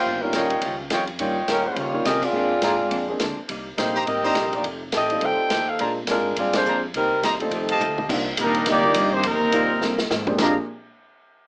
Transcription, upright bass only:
X:1
M:4/4
L:1/8
Q:"Swing" 1/4=209
K:Bbmix
V:1 name="Upright bass" clef=bass
G,,,2 B,,,2 _D,,2 F,,2 | G,,2 B,,2 _D,2 C,2 | B,,2 A,,2 F,,2 D,, z | C,,2 B,,,2 A,,,2 B,,,2 |
F,,,2 =A,,,2 C,, z E,,2 | B,,2 A,,2 G,,2 F,,2 | C,,2 E,,2 F,,2 D,,2 | C,,2 B,,,2 D,,2 G,,2 |
(3F,, E,, C,, E,,2 G,,2 A,,2 | B,,, z6 z |]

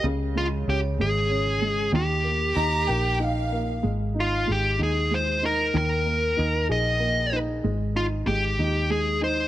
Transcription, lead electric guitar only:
X:1
M:6/8
L:1/8
Q:3/8=63
K:Ebmix
V:1 name="Lead electric guitar"
z F G A3 | G4 z2 | z F G A c B | B3 e2 z |
z F G2 A c |]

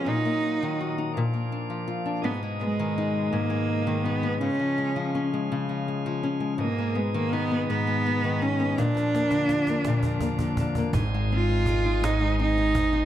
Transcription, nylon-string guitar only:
X:1
M:6/8
L:1/16
Q:3/8=55
K:Abdor
V:1 name="Nylon-string guitar" clef=bass
B,, B, E E, G E B,, B, =D F, F D | A,, A, C E, E2 A,, A,2 E, E C | D, F, A, F, D A, D, F, A, F, D A, | A,, A, C E, E C A,, A, C E, E C |
B,, F, B, =D, =D B, B,, F, B, D, D B, | A,, A, =C E A, E A,, A, C E A, E |]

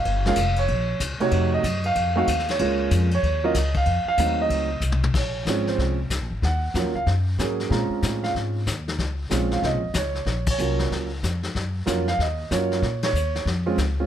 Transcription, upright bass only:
X:1
M:4/4
L:1/8
Q:"Swing" 1/4=188
K:Bbm
V:1 name="Upright bass" clef=bass
G,,,2 F,,,2 B,,,2 D,, z | F,,2 G,,2 F,,2 E,,2 | D,,2 F,,2 E,,2 D,,2 | F,, z E,,2 D,,2 C,,2 |
B,,,2 A,,,2 C,,2 (3D,, B,,, A,,, | E,,2 (3F,, E,, D,, G,,2 A,,2 | B,, z =A,,2 _A,,2 E,,2 | D,,2 B,,,2 (3C,, B,,, A,,, D,,2 |
B,,,2 C,,2 D,,2 F,,2 | G,,2 F,,2 E,,2 G,,2 | B,,2 E,,2 F,,2 D,,2 |]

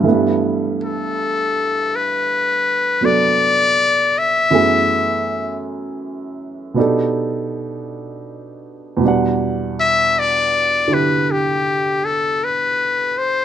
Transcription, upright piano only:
X:1
M:4/4
L:1/8
Q:"Swing" 1/4=54
K:G
V:1 name="Upright piano"
[G,,E,G,A,B,]4- [G,,E,G,A,B,] [F,B,DA]3 | [F,,E,A,B,^G]4 [B,,B,D^D=GA]4 | [E,,B,,G,Df]3 [D,EG]4- [D,EG] |]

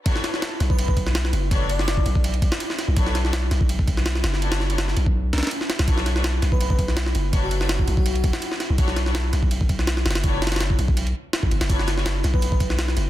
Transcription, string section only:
X:1
M:4/4
L:1/16
Q:"Swing 16ths" 1/4=165
K:Bm
V:1 name="String section"
[DFABc]3 [DFABc] z12 | [DFABc]3 [DFABc] z12 | [DFABc]3 [DFABc] z12 | [DFABc]3 [DFABc] z12 |
[DFABc]3 [DFABc] z12 | [DFABc]3 [DFABc] z12 | [DFABc]3 [DFABc] z12 | [DFABc]3 [DFABc] z12 |
[DFABc]3 [DFABc] z12 |]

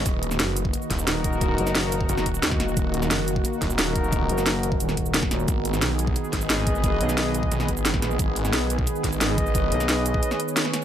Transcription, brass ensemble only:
X:1
M:4/4
L:1/16
Q:1/4=177
K:Ebm
V:1 name="Brass ensemble"
z8 z3 [EGB]4- [EGB]- | [EGB]8- [EGB] [EGB] z6 | z8 z3 [EGB]4- [EGB]- | [EGB]8- [EGB] z6 z |
z8 z3 [Ace]4- [Ace]- | [Ace]8- [Ace] [Ace] z6 | z8 z3 [Ace]4- [Ace]- | [Ace]8- [Ace] [Ace] z6 |]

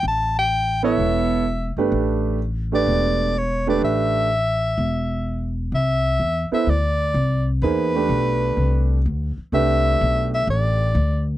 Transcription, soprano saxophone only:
X:1
M:4/4
L:1/8
Q:"Swing" 1/4=126
K:Ador
V:1 name="Soprano saxophone"
a g2 e4 z | z3 d3 ^c d | e6- e z | [K:C] e3 e d3 z |
B6 z2 | e3 e d3 z |]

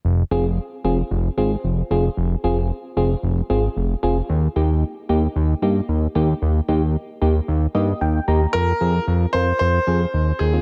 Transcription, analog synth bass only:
X:1
M:4/4
L:1/16
Q:1/4=113
K:Fm
V:1 name="Analog synth bass" clef=bass
F,,,2 F,,,3 z F,,,2 F,,,2 A,,,2 F,,,2 F,,,2 | F,,,2 F,,,3 z F,,,2 F,,,2 A,,,2 F,,,2 F,,,2 | E,,2 E,,3 z E,,2 E,,2 G,,2 E,,2 E,,2 | E,,2 E,,3 z E,,2 E,,2 G,,2 E,,2 E,,2 |
F,,2 F,,2 F,,2 F,,2 F,,2 F,,2 E,,2 E,,2 |]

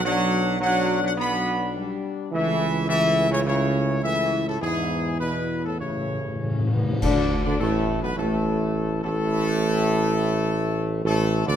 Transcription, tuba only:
X:1
M:4/4
L:1/16
Q:1/4=104
K:D
V:1 name="Tuba" clef=bass
B,,,12- B,,,2 z2 | C,,16 | E,,8 A,,,6 z2 | D,,3 D,, A,,,3 B,,, A,,,6 A,,,2- |
A,,,12 A,,,3 D,, |]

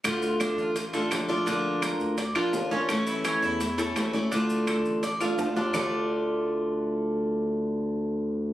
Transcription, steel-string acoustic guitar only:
X:1
M:4/4
L:1/8
Q:1/4=169
K:Dm
V:1 name="Steel-string acoustic guitar"
[D,A,DF]4 z [A,DF] [D,A,DF] [A,DF] | [D,B,DF]4 z [B,DF] [D,B,DF] [B,DF] | [E,A,^CE]4 z [A,CE] [E,A,CE] [A,CE] | [D,A,DF]4 z [A,DF] [D,A,DF] [A,DF] |
[D,A,DF]8- | [D,A,DF]8 |]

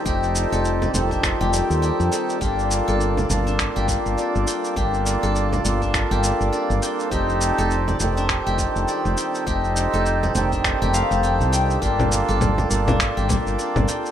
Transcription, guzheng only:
X:1
M:4/4
L:1/16
Q:"Swing 16ths" 1/4=102
K:Gm
V:1 name="Guzheng"
G z2 A z d2 D2 G z2 G z A z | G z2 A z d2 D2 G z2 d z g2 | G z2 A z d2 D2 G z2 d z g2 | G z2 A z d2 D2 G z2 d z g2 |
G z2 A z d2 D2 G f d G z g z | G z2 A z d2 D2 G z2 d z g2 |]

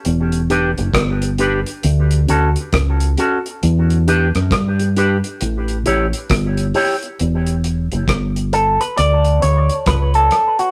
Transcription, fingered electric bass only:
X:1
M:4/4
L:1/16
Q:"Swing 16ths" 1/4=67
K:Edor
V:1 name="Fingered electric bass" clef=bass
E,,,3 F,,, G,,,3 z D,,2 D,, z C,,2 z2 | E,,3 F,, G,,3 z A,,,2 A,,, z G,,,2 z2 | E,,,3 F,,, G,,,3 z D,,2 D,, z C,,2 z2 |]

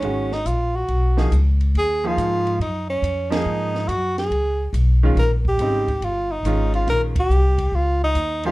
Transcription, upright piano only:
X:1
M:4/4
L:1/8
Q:"Swing" 1/4=140
K:G#dor
V:1 name="Upright piano"
[D,G,CF] z4 [E,A,DG] z2 | z [E,A,DG]3 z3 [E,A,DG]- | [E,A,DG]2 z4 z [D,G,CE] | z2 [C,=G,^B,D] z3 [D,^G,CE]2- |
[D,G,CE] z6 [E,A,D=G] |]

